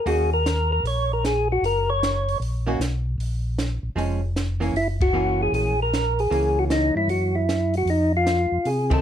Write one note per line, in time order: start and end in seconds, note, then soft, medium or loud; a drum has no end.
0.06 0.80 D#2 medium
0.06 0.29 D#3 soft
0.06 0.29 A#3 soft
0.06 0.29 C#4 soft
0.06 0.29 F#4 medium
0.06 0.30 G#4 medium
0.06 open hi-hat soft
0.34 0.71 A#4 medium
0.46 snare medium
0.46 closed hi-hat soft
0.72 0.86 A#4 medium
0.83 1.58 A#1 medium
0.83 1.12 C#5 medium
0.83 open hi-hat soft
1.13 1.24 A#4 medium
1.25 1.48 G#4 medium
1.25 snare medium
1.25 closed hi-hat soft
1.52 1.65 F#4 medium
1.61 2.36 F#1 medium
1.61 open hi-hat soft
1.66 1.90 A#4 medium
1.90 2.38 C#5 medium
2.03 snare medium
2.03 closed hi-hat soft
2.29 open hi-hat soft
2.40 2.77 A#1 medium
2.40 open hi-hat soft
2.67 2.79 D#3 medium
2.67 2.79 A#3 medium
2.67 2.79 C#4 medium
2.67 2.79 F#4 medium
2.79 3.16 B1 medium
2.79 snare medium
2.79 closed hi-hat soft
3.18 3.79 A#1 medium
3.18 open hi-hat soft
3.58 snare medium
3.58 closed hi-hat soft
3.83 3.90 A#1 soft
3.95 4.71 F1 medium
3.95 4.19 F3 soft
3.95 4.20 G#3 soft
3.95 4.20 C#4 medium
3.95 open hi-hat soft
4.36 snare medium
4.36 closed hi-hat soft
4.60 4.73 E3 medium
4.60 4.74 A#3 medium
4.60 4.74 C#4 medium
4.60 open hi-hat soft
4.73 5.49 F#1 medium
4.73 4.88 E4 medium
4.73 open hi-hat soft
5.01 5.42 F#4 medium
5.01 kick medium
5.01 ride medium
5.13 5.73 E3 soft
5.13 5.73 A#3 soft
5.13 5.74 C#4 soft
5.43 5.54 G#4 medium
5.52 6.27 A#1 medium
5.52 5.80 G#4 medium
5.52 open hi-hat soft
5.82 6.21 A#4 medium
5.93 snare medium
5.93 closed hi-hat soft
6.19 6.59 G#4 medium
6.19 open hi-hat soft
6.30 6.91 C#2 medium
6.30 7.40 E3 soft
6.30 7.40 A#3 soft
6.30 7.40 C#4 soft
6.30 open hi-hat soft
6.59 6.65 F#4 medium
6.70 6.95 D#4 medium
6.70 snare medium
6.70 closed hi-hat soft
6.96 7.08 G2 medium
6.96 7.09 E4 medium
7.08 7.83 F#2 medium
7.08 7.36 F#4 medium
7.08 open hi-hat soft
7.35 7.75 E4 medium
7.49 snare medium
7.49 closed hi-hat soft
7.74 7.90 F#4 medium
7.74 open hi-hat soft
7.85 8.47 F2 medium
7.85 open hi-hat soft
7.90 8.12 D#4 medium
8.17 8.69 F4 medium
8.27 snare medium
8.27 closed hi-hat soft
8.51 8.58 F2 soft
8.65 9.02 C3 medium
8.65 8.92 G#4 medium
8.65 open hi-hat soft
8.90 9.02 D#3 medium
8.90 9.02 A3 medium
8.90 9.02 C4 medium
8.90 9.02 A4 medium
8.90 kick medium
8.90 ride medium